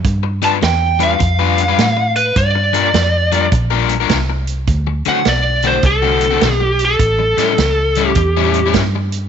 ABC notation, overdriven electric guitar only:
X:1
M:4/4
L:1/16
Q:"Swing" 1/4=103
K:G
V:1 name="Overdriven electric guitar"
z2 [G,D=FB] z3 [G,DFB] z2 [G,DFB] z [G,DFB] z4 | z2 [G,D=F_B] z3 [G,DFB] z2 [G,DFB] z [G,DFB] z4 | z2 [D,A,CF] z3 [D,A,CF] z2 [D,A,CF] z [D,A,CF] z4 | z2 [A,,G,^CE] z3 [A,,G,CE] z2 [A,,G,CE] z [A,,G,CE] z4 |]